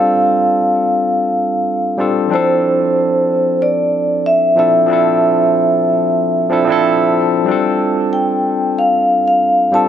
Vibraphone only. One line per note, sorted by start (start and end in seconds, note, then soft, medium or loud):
0.00 1.96 F5 loud
2.34 3.66 C5 medium
3.62 4.22 D5 loud
4.26 4.58 E5 loud
4.59 7.12 E5 medium
8.13 8.79 G5 medium
8.79 9.26 F5 medium
9.28 9.76 F5 medium
9.74 9.88 A5 loud